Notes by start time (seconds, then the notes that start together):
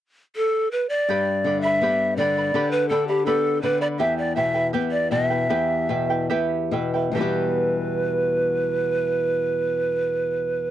0.36 A4
0.71 B4
0.89 D5
1.09 G2 G4 B4 D5 G5 B5
1.44 D3 B4 D5 G5 B5
1.61 E5 B5
1.65 B4 D5
1.81 B3 G4 B4 D5 G5 B5
2.17 D3 B4 D5 G5
2.21 B5
2.37 B4 D5 B5
2.54 D3 G4 B4 D5 G5 B5
2.71 B4
2.89 D4 A4 B4 D5 G5 B5
3.08 G4 B4 D5 B5
3.26 B3 G4 A4 B4 D5 G5 B5
3.62 D3 B4 D5 G5 B5
3.81 B4 D5 B5
3.99 E2 E4 G4 B4 E5 G5
4.18 D5
4.36 B2 E4 B4 E5 G5
4.54 E4 B4 G5
4.73 B3 E4 G4 B4 E5 G5
4.91 D5
5.11 B2 E4 B4 E5 G5
5.30 E4 B4 G5
5.50 E2 E4 G4 B4 E5 G5
5.89 B2 E4 B4 E5 G5
6.10 E4 B4 G5
6.30 B3 E4 G4 B4 E5 G5
6.71 B2 E4 B4 E5 G5
6.94 E4 B4 G5
7.12 E2 B2 E3 G4 B4
7.17 G3 B3 E4 B4 E5
7.21 G4 G5